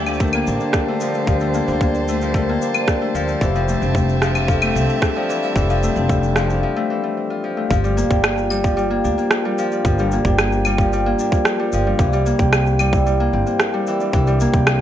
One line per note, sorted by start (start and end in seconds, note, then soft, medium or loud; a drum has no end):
0.00 0.41 D2 medium
0.00 3.42 D3 medium
0.00 1.15 G3 medium
0.00 0.20 A3 medium
0.00 1.33 C4 medium
0.00 0.47 D4 medium
0.00 0.62 D4 medium
0.00 0.75 G4 medium
0.00 0.85 D5 medium
0.00 0.85 E5 medium
0.00 0.35 G5 medium
0.06 1.00 F3 medium
0.06 0.21 C5 medium
0.06 claves medium
0.06 shaker soft
0.13 6.64 A5 medium
0.13 shaker soft
0.20 0.40 A3 medium
0.20 0.29 A#4 medium
0.20 4.28 C5 medium
0.20 kick loud
0.20 shaker soft
0.27 shaker soft
0.33 0.61 A#3 loud
0.33 0.42 G5 medium
0.33 claves medium
0.47 0.57 A1 medium
0.47 1.68 D4 medium
0.47 0.61 A#4 loud
0.47 shaker medium
0.60 0.94 A#3 medium
0.60 0.74 D4 medium
0.60 shaker soft
0.73 0.87 G4 medium
0.73 kick loud
0.73 cross-stick medium
0.73 shaker soft
0.88 1.14 A3 medium
0.88 1.01 D5 loud
1.00 1.27 F3 medium
1.00 1.14 D4 medium
1.00 shaker medium
1.14 1.27 G3 medium
1.14 1.41 A3 medium
1.14 shaker soft
1.27 1.61 D2 medium
1.27 2.21 F3 medium
1.27 1.40 G4 medium
1.27 kick loud
1.27 shaker soft
1.40 1.61 A3 medium
1.40 1.49 G5 medium
1.40 shaker soft
1.54 1.62 G3 medium
1.54 1.82 A#3 medium
1.54 shaker medium
1.68 2.55 D2 medium
1.68 1.81 D4 medium
1.68 2.62 D4 medium
1.68 shaker soft
1.81 2.15 A#3 medium
1.81 1.92 G4 medium
1.81 kick loud
1.81 shaker soft
1.94 2.02 G4 medium
1.94 shaker soft
2.08 2.35 A3 loud
2.08 2.21 D4 medium
2.08 shaker medium
2.21 3.14 F3 medium
2.21 2.34 C5 medium
2.21 shaker soft
2.34 2.55 A3 loud
2.34 2.43 A#4 loud
2.34 kick medium
2.34 shaker soft
2.49 2.74 A#3 loud
2.49 2.56 G5 medium
2.61 5.42 D4 medium
2.61 2.74 A#4 medium
2.61 shaker medium
2.74 3.08 A#3 medium
2.74 2.87 D4 medium
2.74 claves medium
2.74 shaker soft
2.88 3.01 G4 medium
2.88 kick loud
2.88 cross-stick medium
2.88 shaker soft
3.00 3.28 A3 loud
3.00 3.14 D5 loud
3.14 3.34 D2 medium
3.14 3.47 F3 loud
3.14 3.27 D4 medium
3.14 shaker medium
3.28 3.41 G3 medium
3.28 3.69 A3 medium
3.28 shaker soft
3.41 3.75 F1 loud
3.41 4.35 E3 medium
3.41 3.55 G4 loud
3.41 kick medium
3.41 shaker soft
3.55 4.21 F3 loud
3.55 3.63 G5 medium
3.55 shaker soft
3.68 3.76 G3 medium
3.68 3.96 A3 medium
3.68 6.63 C4 medium
3.68 shaker medium
3.74 6.63 E5 medium
3.82 4.69 F1 medium
3.82 4.76 C4 medium
3.82 3.95 D4 medium
3.82 shaker soft
3.95 4.62 A3 medium
3.95 4.07 G4 medium
3.95 kick medium
3.95 shaker soft
4.08 4.16 G4 medium
4.08 shaker soft
4.22 4.48 F3 loud
4.22 4.35 D4 medium
4.22 cross-stick medium
4.22 shaker medium
4.35 5.28 E3 medium
4.35 4.48 C5 medium
4.35 claves medium
4.35 shaker soft
4.48 5.15 F3 loud
4.48 4.56 A4 loud
4.48 kick medium
4.48 shaker soft
4.62 4.89 A3 loud
4.62 4.70 G5 medium
4.62 claves medium
4.75 4.85 C2 medium
4.75 5.97 C4 medium
4.75 4.88 A4 loud
4.75 shaker medium
4.88 5.83 A3 medium
4.88 5.01 D4 medium
4.88 shaker soft
5.02 5.16 G4 medium
5.02 kick loud
5.02 cross-stick medium
5.02 shaker soft
5.16 5.42 F3 medium
5.16 5.29 D5 loud
5.29 5.55 E3 loud
5.29 5.42 D4 medium
5.29 shaker medium
5.43 5.69 F3 medium
5.43 5.56 G3 medium
5.43 shaker soft
5.56 5.90 F1 loud
5.56 6.49 E3 medium
5.56 5.69 G4 loud
5.56 kick loud
5.56 shaker soft
5.70 6.35 F3 loud
5.70 5.77 G5 medium
5.70 shaker soft
5.83 5.91 G3 medium
5.83 6.10 A3 medium
5.83 shaker medium
5.96 6.63 F1 medium
5.96 8.97 C4 medium
5.96 6.09 D4 medium
5.96 shaker soft
6.09 6.76 A3 medium
6.09 6.21 G4 medium
6.09 kick medium
6.09 shaker soft
6.23 6.31 G4 medium
6.23 shaker soft
6.35 6.62 F3 loud
6.35 6.49 D4 medium
6.35 cross-stick medium
6.35 shaker medium
6.48 6.89 E3 medium
6.48 6.62 C5 medium
6.48 shaker soft
6.63 7.43 F3 medium
6.76 7.03 A3 loud
6.90 7.76 E3 medium
7.04 7.57 A3 medium
7.30 9.82 F4 medium
7.44 7.70 F3 medium
7.57 8.03 A3 medium
7.69 8.04 G1 medium
7.69 8.62 F3 medium
7.69 7.83 G4 medium
7.69 kick loud
7.69 shaker soft
7.84 8.49 G3 loud
7.84 7.96 G4 medium
7.84 shaker soft
7.97 8.23 A#3 medium
7.97 8.10 G4 medium
7.97 shaker medium
8.10 8.98 G1 medium
8.10 9.04 D4 medium
8.10 8.23 G5 medium
8.10 kick loud
8.10 shaker soft
8.24 8.90 A#3 medium
8.24 8.37 G5 medium
8.24 cross-stick loud
8.24 claves medium
8.24 shaker soft
8.38 8.50 F4 medium
8.38 shaker soft
8.50 8.75 G3 loud
8.50 8.63 G5 medium
8.50 claves medium
8.50 shaker medium
8.64 9.57 F3 medium
8.64 8.77 G5 medium
8.64 kick loud
8.64 shaker soft
8.77 9.44 G3 loud
8.77 8.90 F4 medium
8.77 shaker soft
8.90 9.17 A#3 loud
8.90 9.03 G4 medium
9.04 9.14 D2 medium
9.04 10.26 D4 medium
9.04 9.17 G4 loud
9.04 shaker medium
9.18 10.12 A#3 medium
9.18 9.25 C5 medium
9.18 shaker soft
9.31 9.44 A#4 medium
9.31 cross-stick loud
9.31 shaker soft
9.45 9.71 G3 medium
9.45 9.58 F4 medium
9.58 9.84 F3 loud
9.58 9.72 G5 medium
9.58 shaker medium
9.72 9.98 G3 medium
9.72 9.80 D4 medium
9.72 shaker soft
9.85 10.19 G1 loud
9.85 10.78 F3 medium
9.85 9.98 G4 medium
9.85 kick loud
9.85 shaker soft
9.98 10.65 G3 medium
9.98 10.12 G4 loud
9.98 shaker soft
10.12 10.39 A#3 medium
10.12 10.26 G4 loud
10.12 shaker medium
10.25 11.12 G1 loud
10.25 11.19 D4 medium
10.25 10.39 G5 loud
10.25 kick loud
10.25 shaker soft
10.38 11.06 A#3 medium
10.38 10.52 G5 medium
10.38 cross-stick medium
10.38 claves medium
10.38 shaker soft
10.52 10.65 F4 medium
10.52 shaker soft
10.65 10.92 G3 loud
10.65 10.79 G5 medium
10.65 claves medium
10.65 shaker medium
10.78 11.72 F3 medium
10.78 10.92 G5 medium
10.78 kick loud
10.78 shaker soft
10.93 11.58 G3 loud
10.93 11.06 F4 medium
10.93 shaker soft
11.06 11.32 A#3 loud
11.06 11.18 G4 medium
11.19 14.00 D4 medium
11.19 11.32 G4 medium
11.19 shaker medium
11.32 12.26 A#3 medium
11.32 11.40 C5 medium
11.32 kick loud
11.32 shaker soft
11.45 11.59 A#4 medium
11.45 cross-stick loud
11.45 shaker soft
11.58 11.85 G3 medium
11.58 11.71 F4 medium
11.72 11.91 G1 medium
11.72 12.04 F3 loud
11.72 11.85 G5 medium
11.72 shaker medium
11.85 12.04 G3 medium
11.85 11.93 D4 medium
11.99 12.33 C2 medium
11.99 12.92 E3 medium
11.99 12.10 G4 medium
11.99 kick loud
11.99 shaker soft
12.12 12.79 G3 loud
12.12 12.24 G4 loud
12.12 shaker soft
12.26 12.52 A#3 medium
12.26 12.38 G4 loud
12.26 shaker medium
12.39 13.27 C2 loud
12.39 13.33 C4 medium
12.39 12.52 G5 loud
12.39 kick loud
12.39 shaker soft
12.53 13.20 A#3 medium
12.53 12.66 G5 medium
12.53 cross-stick medium
12.53 claves medium
12.53 shaker soft
12.66 12.79 E4 medium
12.66 shaker soft
12.79 13.05 G3 loud
12.79 12.93 G5 medium
12.79 claves medium
12.79 shaker medium
12.93 13.86 E3 medium
12.93 13.06 G5 medium
12.93 kick loud
12.93 shaker soft
13.06 13.72 G3 medium
13.06 13.19 E4 medium
13.06 shaker soft
13.19 13.46 A#3 loud
13.19 13.32 G4 medium
13.33 13.43 G1 medium
13.33 14.54 C4 medium
13.33 13.46 G4 loud
13.45 14.41 A#3 medium
13.45 13.53 C5 medium
13.45 shaker soft
13.59 13.72 A#4 medium
13.59 cross-stick loud
13.59 shaker soft
13.72 14.00 G3 loud
13.72 13.85 E4 medium
13.87 14.13 E3 medium
13.87 13.99 G5 medium
13.87 shaker medium
13.99 14.26 G3 medium
13.99 14.07 D4 medium
13.99 shaker soft
14.13 14.47 C2 loud
14.13 14.81 E3 medium
14.13 14.25 G4 medium
14.13 kick loud
14.13 shaker soft
14.26 14.81 G3 loud
14.26 14.39 G4 medium
14.26 shaker soft
14.40 14.67 A#3 loud
14.40 14.53 G4 medium
14.40 shaker medium
14.52 14.81 C2 medium
14.52 14.81 C4 medium
14.52 14.64 G5 loud
14.52 kick loud
14.52 shaker soft
14.65 14.81 A#3 medium
14.65 14.79 G5 medium
14.65 cross-stick loud
14.65 claves medium
14.65 shaker soft